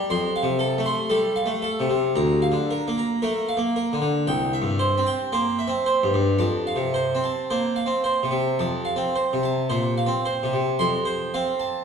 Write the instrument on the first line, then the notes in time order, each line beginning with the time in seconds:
harpsichord
Already playing: G3
0.10 F2 C6
0.36 F5
0.43 C3
0.59 A4
0.78 A3
0.86 C6
1.10 G3 A4
1.36 F5
1.46 A3
1.62 A4
1.80 C3
1.89 C3
2.16 D2 A#5
2.42 F5
2.52 D3
2.71 A#4
2.88 A#3
2.98 A#5
3.22 A3 A#4
3.49 F5
3.57 A#3
3.76 A#4
3.93 D3
4.02 D3
4.27 C2 G5
4.53 E5
4.62 G2
4.79 C5
4.98 C4
5.07 G5
5.32 A#3 C5
5.59 E5
5.68 C4
5.86 C5
6.03 G2
6.14 G2
6.39 F2 A5
6.67 F5
6.76 C3
6.94 C5
7.15 C4
7.24 A5
7.50 A#3 C5
7.76 F5
7.86 C4
8.04 C5
8.23 C3
8.31 C3
8.59 F2 A5
8.85 F5
8.96 C4
9.16 C5
9.33 C3
9.43 A5
9.70 A#2 C5
9.98 F5
10.06 C4
10.25 C5
10.43 C3
10.53 C3
10.79 F2 C6
11.05 C5
11.34 C4 F5
11.60 A5